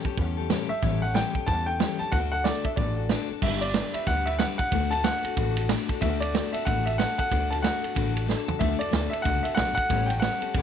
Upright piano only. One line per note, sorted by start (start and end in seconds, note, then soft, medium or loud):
0.69 1.03 E5 loud
1.02 1.14 F#5 medium
1.14 1.48 G5 loud
1.47 1.65 A5 loud
1.66 2.00 G5 loud
1.99 2.12 A5 loud
2.12 2.17 F#5 loud
2.32 2.45 F#5 medium
2.44 2.65 D5 medium
2.64 2.69 E5 medium
2.76 3.25 D5 medium
3.42 3.63 E5 medium
3.61 3.95 D5 medium
3.94 4.07 E5 medium
4.07 4.26 F#5 loud
4.26 4.39 E5 medium
4.39 4.44 F#5 loud
4.58 4.92 F#5 loud
4.91 5.04 A5 loud
5.04 5.65 F#5 loud
6.01 6.22 E5 medium
6.20 6.54 D5 medium
6.52 6.66 E5 medium
6.65 6.84 F#5 medium
6.86 6.98 E5 medium
6.98 7.17 F#5 loud
7.18 7.52 F#5 loud
7.50 7.55 A5 loud
7.62 8.24 F#5 medium
8.59 8.80 E5 medium
8.79 9.13 D5 medium
9.10 9.24 E5 medium
9.22 9.44 F#5 loud
9.43 9.56 E5 medium
9.55 9.73 F#5 loud
9.75 10.09 F#5 loud
10.06 10.21 G5 medium
10.20 10.62 F#5 loud